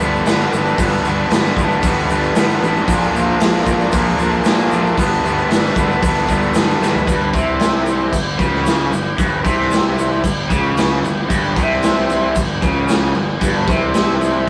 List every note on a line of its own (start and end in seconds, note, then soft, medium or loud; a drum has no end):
0.00 0.21 G1 medium
0.00 0.25 G2 medium
0.00 0.25 D3 medium
0.00 0.26 G3 medium
0.00 0.27 B3 medium
0.00 0.29 D4 loud
0.00 shaker medium
0.15 shaker soft
0.26 0.46 G1 loud
0.26 0.51 G2 loud
0.26 0.52 D3 medium
0.26 0.53 G3 loud
0.26 0.54 B3 loud
0.26 0.55 D4 loud
0.26 snare loud
0.26 open hi-hat medium
0.26 shaker loud
0.40 shaker soft
0.52 0.73 G1 medium
0.52 0.76 G2 medium
0.52 0.77 D3 medium
0.52 0.78 G3 medium
0.52 0.79 B3 medium
0.52 0.80 D4 loud
0.52 shaker medium
0.67 shaker soft
0.77 0.99 G1 loud
0.77 1.02 G2 loud
0.77 1.03 D3 medium
0.77 1.04 G3 loud
0.77 1.04 B3 loud
0.77 1.06 D4 loud
0.77 kick loud
0.77 open hi-hat medium
0.77 shaker loud
0.92 shaker soft
1.04 1.26 G1 loud
1.04 1.29 G2 medium
1.04 1.30 D3 medium
1.04 1.30 G3 loud
1.04 1.31 B3 loud
1.04 1.33 D4 loud
1.04 shaker medium
1.30 1.52 G1 loud
1.30 1.56 G2 loud
1.30 1.57 D3 loud
1.30 1.58 G3 medium
1.30 1.58 B3 loud
1.30 1.60 D4 medium
1.30 snare loud
1.30 open hi-hat medium
1.30 shaker loud
1.45 shaker soft
1.57 1.77 G1 medium
1.57 1.83 G2 medium
1.57 1.84 D3 medium
1.57 1.84 G3 medium
1.57 1.85 B3 loud
1.57 1.86 D4 loud
1.57 kick medium
1.57 shaker medium
1.71 shaker soft
1.83 2.04 G1 loud
1.83 2.08 G2 loud
1.83 2.09 D3 medium
1.83 2.09 G3 medium
1.83 2.10 B3 loud
1.83 2.11 D4 loud
1.83 kick loud
1.83 open hi-hat medium
1.83 shaker loud
2.09 2.30 G1 medium
2.09 2.36 G2 medium
2.09 2.36 D3 medium
2.09 2.37 G3 loud
2.09 2.37 B3 medium
2.09 2.39 D4 loud
2.09 shaker medium
2.23 shaker soft
2.35 2.56 G1 medium
2.35 2.62 G2 medium
2.35 2.62 D3 loud
2.35 2.63 G3 medium
2.35 2.63 B3 loud
2.35 snare loud
2.35 open hi-hat medium
2.35 shaker loud
2.39 2.65 D4 loud
2.50 shaker soft
2.62 2.82 A1 medium
2.62 2.87 G2 loud
2.62 2.87 D3 medium
2.62 2.88 G3 medium
2.62 2.88 B3 medium
2.62 2.90 D4 loud
2.62 shaker medium
2.76 shaker soft
2.87 3.08 A#1 medium
2.87 3.11 A#2 medium
2.87 3.12 D3 medium
2.87 3.13 F3 loud
2.87 3.13 A#3 loud
2.87 3.14 D4 loud
2.87 kick loud
2.87 open hi-hat medium
2.87 shaker loud
3.03 shaker soft
3.12 3.35 A#1 medium
3.12 3.38 A#2 medium
3.12 3.39 D3 loud
3.12 3.40 F3 loud
3.12 3.41 A#3 loud
3.12 3.42 D4 loud
3.12 shaker medium
3.40 3.61 A#1 loud
3.40 3.64 A#2 loud
3.40 3.66 D3 medium
3.40 3.66 F3 loud
3.40 3.66 A#3 loud
3.40 3.68 D4 loud
3.40 snare loud
3.40 open hi-hat medium
3.40 shaker loud
3.55 shaker soft
3.65 3.87 A#1 medium
3.65 3.90 A#2 medium
3.65 3.91 D3 medium
3.65 3.92 F3 medium
3.65 3.93 A#3 loud
3.65 3.94 D4 medium
3.65 kick medium
3.65 shaker medium
3.80 shaker soft
3.91 4.13 A#1 loud
3.91 4.17 A#2 medium
3.91 4.18 D3 medium
3.91 4.19 F3 loud
3.91 4.19 A#3 loud
3.91 4.20 D4 loud
3.91 kick loud
3.91 open hi-hat medium
3.91 shaker medium
4.18 4.40 A#1 medium
4.18 4.45 A#2 medium
4.18 4.46 D3 medium
4.18 4.46 F3 medium
4.18 4.47 A#3 loud
4.18 4.49 D4 loud
4.18 shaker medium
4.31 shaker soft
4.44 4.66 A#1 medium
4.44 4.70 A#2 medium
4.44 4.71 D3 medium
4.44 4.72 F3 loud
4.44 4.72 A#3 loud
4.44 snare loud
4.44 open hi-hat medium
4.44 shaker medium
4.49 4.74 D4 loud
4.59 shaker soft
4.71 4.92 A#1 medium
4.71 4.96 A#2 loud
4.71 4.96 D3 medium
4.71 4.97 F3 medium
4.71 4.97 A#3 medium
4.71 4.99 D4 medium
4.71 shaker medium
4.85 shaker soft
4.97 5.18 G1 medium
4.97 5.23 G2 medium
4.97 5.23 D3 loud
4.97 5.24 G3 loud
4.97 5.25 B3 loud
4.97 5.25 D4 loud
4.97 kick loud
4.97 open hi-hat medium
4.97 shaker loud
5.13 shaker soft
5.24 5.44 G1 medium
5.24 5.47 G2 medium
5.24 5.48 D3 medium
5.24 5.49 G3 loud
5.24 5.50 B3 medium
5.24 5.50 D4 loud
5.24 shaker medium
5.38 shaker soft
5.48 5.71 G1 medium
5.48 5.73 G2 medium
5.48 5.75 D3 loud
5.48 5.75 G3 loud
5.48 5.75 B3 medium
5.48 5.77 D4 loud
5.48 snare loud
5.48 open hi-hat medium
5.48 shaker medium
5.65 shaker soft
5.75 5.97 G1 medium
5.75 5.99 G2 medium
5.75 6.00 D3 medium
5.75 6.01 G3 medium
5.75 6.01 B3 loud
5.75 6.02 D4 loud
5.75 kick medium
5.75 shaker medium
5.90 shaker soft
6.00 6.23 G1 medium
6.00 6.27 G2 medium
6.00 6.28 D3 loud
6.00 6.29 G3 loud
6.00 6.29 B3 medium
6.00 6.30 D4 loud
6.00 kick loud
6.00 open hi-hat medium
6.00 shaker loud
6.16 shaker soft
6.29 6.49 G1 medium
6.29 6.52 G2 medium
6.29 6.53 D3 medium
6.29 6.54 G3 loud
6.29 6.54 B3 medium
6.29 6.55 D4 medium
6.29 kick medium
6.29 shaker medium
6.42 shaker soft
6.54 6.76 G1 medium
6.54 6.79 G2 loud
6.54 6.79 D3 medium
6.54 6.80 G3 loud
6.54 6.81 B3 medium
6.54 6.81 D4 loud
6.54 snare loud
6.54 open hi-hat medium
6.54 shaker loud
6.69 shaker soft
6.80 7.02 G1 medium
6.80 7.05 G2 medium
6.80 7.06 D3 medium
6.80 7.06 G3 medium
6.80 7.06 B3 medium
6.80 7.07 D4 medium
6.80 snare medium
6.80 shaker medium
6.95 floor tom medium
6.95 shaker soft
7.07 7.32 G1 medium
7.07 7.33 G2 medium
7.07 kick loud
7.07 crash medium
7.07 shaker loud
7.33 8.09 C2 medium
7.33 8.12 C3 loud
7.33 kick loud
7.33 crash medium
7.33 shaker medium
7.60 snare loud
7.60 crash medium
7.60 shaker medium
7.86 crash medium
7.86 shaker medium
8.13 8.37 G1 medium
8.13 8.34 G2 medium
8.13 kick medium
8.13 crash medium
8.13 shaker loud
8.39 8.88 C#2 medium
8.39 8.91 C#3 loud
8.39 kick loud
8.39 crash medium
8.39 shaker medium
8.55 snare soft
8.66 snare loud
8.66 crash medium
8.66 shaker loud
8.91 9.17 G1 medium
8.91 9.13 G2 medium
8.91 crash soft
8.91 shaker medium
9.18 9.43 G1 medium
9.18 9.44 G2 loud
9.18 kick loud
9.18 crash medium
9.18 shaker loud
9.43 10.20 C2 medium
9.43 10.22 C3 loud
9.43 kick loud
9.43 crash medium
9.43 shaker medium
9.61 snare soft
9.71 snare loud
9.71 crash medium
9.71 shaker loud
9.98 crash medium
9.98 shaker medium
10.22 10.49 G1 medium
10.22 10.44 G2 medium
10.22 kick medium
10.22 crash medium
10.22 shaker loud
10.50 11.00 C#2 medium
10.50 11.02 C#3 loud
10.50 kick loud
10.50 crash medium
10.50 shaker medium
10.77 snare loud
10.77 crash medium
10.77 shaker loud
11.01 11.27 G1 medium
11.01 11.24 G2 medium
11.01 crash medium
11.01 shaker medium
11.29 11.55 G1 loud
11.29 11.55 G2 loud
11.29 kick loud
11.29 crash medium
11.29 shaker loud
11.56 12.32 C2 medium
11.56 12.35 C3 loud
11.56 kick loud
11.56 crash medium
11.56 shaker medium
11.71 snare soft
11.83 snare loud
11.83 crash medium
11.83 shaker loud
12.10 crash medium
12.10 shaker medium
12.35 12.60 G1 medium
12.35 12.57 G2 medium
12.35 kick loud
12.35 crash medium
12.35 shaker loud
12.62 13.12 C#2 medium
12.62 13.15 C#3 loud
12.62 kick loud
12.62 crash medium
12.62 shaker medium
12.88 snare loud
12.88 crash medium
12.88 shaker loud
13.14 13.40 G1 medium
13.14 13.36 G2 medium
13.14 crash medium
13.41 13.66 G1 medium
13.41 13.68 G2 loud
13.41 kick loud
13.41 crash medium
13.41 shaker loud
13.67 14.44 C2 loud
13.67 14.47 C3 loud
13.67 kick loud
13.67 crash medium
13.67 shaker medium
13.94 snare loud
13.94 crash medium
13.94 shaker loud
14.21 crash medium
14.21 shaker medium